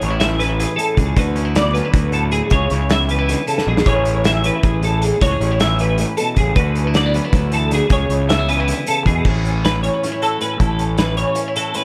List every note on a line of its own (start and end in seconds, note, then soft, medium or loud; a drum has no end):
0.00 0.64 A1 medium
0.00 0.77 A2 medium
0.00 0.38 E3 medium
0.00 0.10 C#4 medium
0.00 0.58 G#4 medium
0.00 0.19 C#5 medium
0.00 closed hi-hat medium
0.10 0.38 E4 soft
0.20 1.15 C#4 medium
0.20 0.39 E5 medium
0.20 snare loud
0.20 closed hi-hat medium
0.39 1.74 E3 medium
0.39 0.78 E4 medium
0.39 0.76 B4 medium
0.39 snare soft
0.39 closed hi-hat medium
0.60 1.15 G#4 medium
0.60 closed hi-hat medium
0.76 1.14 A2 medium
0.76 1.20 E4 medium
0.76 0.98 A4 medium
0.76 closed hi-hat medium
0.97 1.13 C#2 medium
0.97 1.17 G#4 medium
0.97 kick medium
0.97 closed hi-hat medium
1.16 1.79 D2 loud
1.16 2.50 D3 medium
1.16 1.92 F#4 medium
1.16 1.56 B4 loud
1.16 kick loud
1.16 closed hi-hat medium
1.36 1.45 C#4 medium
1.36 closed hi-hat medium
1.45 1.74 E4 soft
1.55 2.54 B3 medium
1.55 1.75 D5 medium
1.55 snare loud
1.55 closed hi-hat medium
1.73 2.49 F#3 medium
1.73 1.85 C#4 medium
1.73 2.12 B4 medium
1.73 snare soft
1.73 closed hi-hat medium
1.85 2.11 E4 medium
1.93 2.41 D2 loud
1.93 2.51 F#4 medium
1.93 kick loud
1.93 snare soft
1.93 closed hi-hat loud
2.12 2.49 A2 medium
2.12 2.70 E4 medium
2.12 2.31 A4 medium
2.12 closed hi-hat medium
2.31 2.51 G#4 medium
2.31 closed hi-hat medium
2.50 2.67 C#2 medium
2.50 3.09 C#3 medium
2.50 3.89 G#4 medium
2.50 2.90 C#5 medium
2.50 kick loud
2.50 closed hi-hat medium
2.70 3.34 C#2 medium
2.70 3.08 E4 medium
2.70 snare soft
2.70 closed hi-hat medium
2.89 3.88 B3 medium
2.89 3.10 E5 medium
2.89 snare loud
2.89 closed hi-hat medium
3.08 3.87 E3 medium
3.08 3.19 C#4 soft
3.08 3.47 B4 medium
3.08 closed hi-hat medium
3.19 3.86 E4 medium
3.29 3.47 D3 medium
3.29 snare soft
3.29 closed hi-hat medium
3.47 3.66 C#3 medium
3.47 3.67 A4 medium
3.47 closed hi-hat medium
3.58 snare medium
3.66 3.83 A#1 medium
3.66 3.86 B2 medium
3.66 3.87 G#4 medium
3.77 snare medium
3.86 4.49 A1 medium
3.86 4.81 A2 medium
3.86 4.44 E3 medium
3.86 4.25 C#4 medium
3.86 4.06 E4 medium
3.86 4.64 G#4 medium
3.86 4.25 C#5 medium
3.86 kick loud
3.86 closed hi-hat medium
4.05 4.46 E4 medium
4.05 closed hi-hat medium
4.24 5.19 C#4 medium
4.24 4.45 E5 medium
4.24 snare loud
4.24 closed hi-hat medium
4.44 5.80 E3 medium
4.44 4.83 E4 medium
4.44 4.83 B4 medium
4.44 closed hi-hat medium
4.63 5.10 A1 medium
4.63 5.20 G#4 medium
4.63 kick loud
4.63 closed hi-hat medium
4.82 5.19 A2 medium
4.82 5.25 E4 medium
4.82 5.04 A4 medium
4.82 closed hi-hat medium
5.02 5.22 G#4 medium
5.02 closed hi-hat medium
5.21 5.37 C#2 medium
5.21 5.99 A2 medium
5.21 5.31 F#4 medium
5.21 5.60 C#5 medium
5.21 kick loud
5.21 closed hi-hat loud
5.31 6.56 G#4 medium
5.40 6.03 A1 medium
5.40 5.52 C#4 medium
5.40 closed hi-hat medium
5.52 5.80 E4 medium
5.60 6.55 C#4 medium
5.60 5.79 E5 medium
5.60 snare loud
5.60 closed hi-hat medium
5.79 7.15 E3 medium
5.79 6.61 E4 soft
5.79 6.17 B4 medium
5.79 closed hi-hat medium
5.98 6.18 A2 medium
5.98 closed hi-hat medium
6.17 6.38 B2 medium
6.17 6.37 A4 medium
6.17 closed hi-hat medium
6.36 6.52 A1 medium
6.36 6.58 C#3 medium
6.36 6.56 G#4 medium
6.36 kick medium
6.36 closed hi-hat medium
6.56 7.19 D2 loud
6.56 7.70 D3 medium
6.56 7.89 F#4 medium
6.56 6.95 B4 medium
6.56 kick loud
6.56 closed hi-hat medium
6.75 6.87 C#4 medium
6.75 closed hi-hat medium
6.87 7.15 E4 soft
6.94 7.06 A3 medium
6.94 7.14 D5 medium
6.94 snare loud
6.94 closed hi-hat medium
7.06 7.91 B3 medium
7.14 7.31 F#3 medium
7.14 7.25 C#4 medium
7.14 7.53 B4 medium
7.14 closed hi-hat medium
7.25 7.91 E4 soft
7.33 7.80 D2 loud
7.33 7.52 F#3 medium
7.33 kick loud
7.33 snare soft
7.33 closed hi-hat medium
7.52 7.71 E3 medium
7.52 7.72 A4 medium
7.52 closed hi-hat medium
7.71 7.89 D3 medium
7.71 7.92 G#4 medium
7.71 snare soft
7.71 closed hi-hat medium
7.89 8.06 C#2 medium
7.89 8.48 C#3 medium
7.89 9.23 G#4 medium
7.89 8.29 C#5 medium
7.89 kick loud
7.89 closed hi-hat loud
8.09 8.72 C#2 medium
8.09 8.48 E4 medium
8.09 closed hi-hat medium
8.28 8.39 A3 medium
8.28 8.48 E5 medium
8.28 snare loud
8.28 closed hi-hat medium
8.39 9.25 B3 medium
8.48 9.26 E3 medium
8.48 8.60 C#4 medium
8.48 8.87 B4 medium
8.48 closed hi-hat medium
8.60 9.26 E4 soft
8.68 8.87 D3 medium
8.68 closed hi-hat medium
8.86 9.07 C#3 medium
8.86 9.06 A4 medium
8.86 closed hi-hat medium
9.05 9.21 E2 medium
9.05 9.26 B2 medium
9.05 9.25 G#4 medium
9.05 kick medium
9.05 closed hi-hat medium
9.25 9.88 A1 medium
9.25 10.41 A2 medium
9.25 9.83 E3 medium
9.25 9.47 C#4 medium
9.25 kick loud
9.25 crash medium
9.29 9.66 E4 medium
9.29 10.22 G#4 medium
9.45 9.84 C#4 medium
9.45 closed hi-hat medium
9.65 10.03 E4 medium
9.65 9.82 B4 medium
9.65 snare loud
9.65 closed hi-hat medium
9.83 11.17 E3 medium
9.83 10.03 C#4 medium
9.83 10.21 C#5 medium
9.83 closed hi-hat medium
10.03 10.12 C#4 medium
10.03 snare soft
10.03 closed hi-hat medium
10.12 10.59 E4 soft
10.22 10.60 F#4 medium
10.22 10.41 A4 medium
10.22 closed hi-hat medium
10.41 10.59 A2 medium
10.41 10.79 C#4 soft
10.41 10.60 B4 medium
10.41 closed hi-hat medium
10.60 11.23 A1 medium
10.60 11.75 A2 medium
10.60 10.98 E4 medium
10.60 10.98 A4 medium
10.60 kick loud
10.60 closed hi-hat medium
10.79 11.19 C#4 medium
10.79 closed hi-hat medium
10.97 11.36 E4 medium
10.97 11.17 B4 medium
10.97 snare loud
10.97 closed hi-hat medium
11.17 11.84 E3 medium
11.17 11.37 C#4 medium
11.17 11.56 C#5 medium
11.17 closed hi-hat medium
11.35 11.48 C#4 medium
11.35 closed hi-hat medium
11.48 11.84 E4 soft
11.56 11.84 F#4 medium
11.56 11.75 A4 medium
11.56 closed hi-hat medium
11.74 11.84 A2 medium
11.74 11.84 C#4 medium
11.74 11.84 B4 medium
11.74 closed hi-hat medium